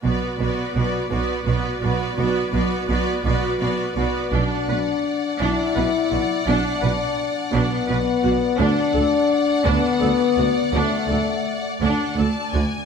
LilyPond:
<<
  \new Staff \with { instrumentName = "Violin section" } { \time 6/8 \key b \minor \tempo 4. = 56 r2. | r2. | fis''2.~ | fis''2. |
fis''2.~ | fis''4. fis''8 a''8 gis''8 | }
  \new Staff \with { instrumentName = "Violin section" } { \time 6/8 \key b \minor <b' d''>8 <b' d''>8 <b' d''>8 <b' d''>8 <b' d''>8 <b' d''>8 | <b' d''>8 <b' d''>8 <b' d''>8 <b' d''>8 <b' d''>8 <b' d''>8 | d''2.~ | d''2. |
d''2.~ | d''2~ d''8 r8 | }
  \new Staff \with { instrumentName = "Viola section" } { \time 6/8 \key b \minor <b fis'>8 <b fis'>8 <b fis'>8 <b fis'>8 <b fis'>8 <b fis'>8 | <b fis'>8 <b fis'>8 <b fis'>8 <b fis'>8 <b fis'>8 <b fis'>8 | d'8 b'8 r8 d'8 b'8 fis'8 | d'8 b'8 r8 d'8 b'8 fis'8 |
d'8 a'8 r8 d'8 a'8 fis'8 | d'8 a'8 r8 d'8 a'8 fis'8 | }
  \new Staff \with { instrumentName = "French horn section" } { \time 6/8 \key b \minor r2. | r2. | d'4. e'4. | d'4. b4. |
d'4. b4. | a4. r4. | }
  \new Staff \with { instrumentName = "Cello section" } { \clef bass \time 6/8 \key b \minor b,8 b,8 b,8 b,8 b,8 b,8 | b,8 b,8 b,8 b,8 b,8 b,8 | b,8 b,8 r8 b,8 b,8 b,8 | b,8 b,8 r8 b,8 b,8 b,8 |
d,8 d,8 r8 d,8 d,8 d,8 | d,8 d,8 r8 d,8 d,8 d,8 | }
  \new Staff \with { instrumentName = "Double bass section" } { \clef bass \time 6/8 \key b \minor b,,8 b,,8 b,,8 b,,8 b,,8 b,,8 | b,,8 b,,8 b,,8 b,,8 b,,8 b,,8 | b,,8 b,,8 r8 b,,8 b,,8 b,,8 | b,,8 b,,8 r8 b,,8 b,,8 b,,8 |
d,8 d,8 r8 d,8 d,8 d,8 | d,8 d,8 r8 d,8 d,8 d,8 | }
>>